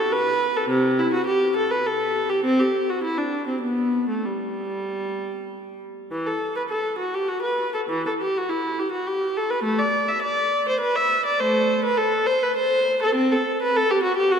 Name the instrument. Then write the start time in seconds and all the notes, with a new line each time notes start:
viola
0.00 A4
0.12 B4
0.56 A4
0.69 C3
0.99 E4
1.14 F#4
1.27 G4
1.57 A4
1.71 B4
1.87 A4
2.29 G4
2.45 C4
2.60 G4
2.90 F#4
3.04 E4
3.18 D4
3.48 C4
3.61 B3
4.09 A3
4.25 G3
6.11 E3
6.27 A4
6.56 B4
6.70 A4
6.99 F#4
7.14 G4
7.28 F#4
7.42 B4
7.74 A4
7.90 E3
8.07 A4
8.21 G4
8.37 F#4
8.49 E4
8.79 G4
8.92 F#4
9.07 G4
9.37 A4
9.50 B4
9.64 A3
9.79 D5
10.09 E5
10.23 D5
10.69 C5
10.80 B4
10.96 E5
11.26 D5
11.40 A3 C5
11.85 B4
11.97 A4
12.27 C5
12.43 B4
12.57 C5
13.03 A4
13.15 C4
13.32 A4
13.62 B4
13.77 A4
13.91 G4
14.04 F#4
14.17 G4
14.32 F#4